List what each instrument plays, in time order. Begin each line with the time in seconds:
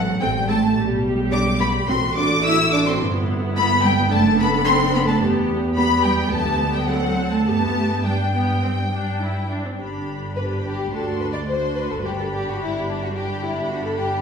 Already playing: double bass section A1, cello section F#3, violin section F#5
0.20 double bass section A1, cello section G3, viola section C4 A4, violin section G5
0.48 cello section A3, viola section C4 A4, violin section A5
0.76 double bass section B1, viola section G3 G4
1.32 cello section D4, violin section D6
1.60 cello section B3, violin section B5
1.88 double bass section A1, viola section A3 F#4, cello section C4, violin section C6
2.16 cello section D4, violin section D6
2.43 cello section E4, violin section E6
2.72 cello section D4, violin section D6
2.86 cello section C4, violin section C6
3.00 double bass section G1, viola section B3 E4
3.55 cello section B3, violin section B5
3.83 cello section G3, violin section G5
4.10 double bass section F#1, cello section A3, viola section D4 A4, violin section A5
4.38 cello section B3, violin section B5
4.65 cello section C4, violin section C6
4.93 cello section B3, violin section B5
5.07 cello section A3, violin section A5
5.21 double bass section E2, viola section B3 G4
5.76 cello section B3, viola section B3 G4, violin section B5
6.03 cello section G3, violin section G5
6.31 double bass section D2, cello section A3, viola section B3 G4, violin section A5
6.74 cello section G3, violin section G5
6.88 cello section F#3, viola section C4 A4, violin section F#5
7.32 cello section A3, violin section A5
7.46 double bass section G2, cello section A3, viola section B3 G4, violin section A5
8.05 cello section G3, viola section D4, violin section G5
8.34 viola section B3
8.63 viola section C4
8.93 viola section D4
9.21 viola section E4
9.49 viola section D4
9.65 viola section C4
9.79 double bass section G1, cello section G2, viola section D4 G4, violin section B5
10.36 viola section D4 G4, violin section B4 B5
10.64 violin section G4
10.92 double bass section D2, cello section D2, viola section D4 F#4, violin section A4 C6
11.20 violin section B4
11.33 violin section D5
11.47 viola section D4 F#4, violin section C5 C6
11.76 violin section B4
11.90 violin section A4
12.04 double bass section G1, cello section G2, viola section D4 G4, violin section G4 B5
12.20 violin section A4
12.34 violin section G4
12.48 violin section F#4
12.63 violin section E4
12.90 violin section D4
13.03 violin section F#4
13.14 viola section D4 G4, violin section G4 B5
13.42 violin section E4
13.69 violin section F#4
13.84 violin section A4
13.97 violin section G4